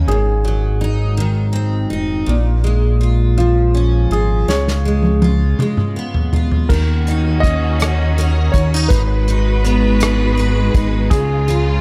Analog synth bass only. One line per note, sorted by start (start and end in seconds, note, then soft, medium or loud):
0.08 1.86 G#1 medium
1.91 2.25 F1 medium
2.28 4.07 A#1 loud
4.10 4.45 G#1 medium
4.47 5.54 C#2 medium
6.70 8.50 D#2 medium
8.54 8.89 D#2 medium
8.91 10.70 G#1 loud
10.74 11.09 G#1 medium
11.11 11.81 C#2 loud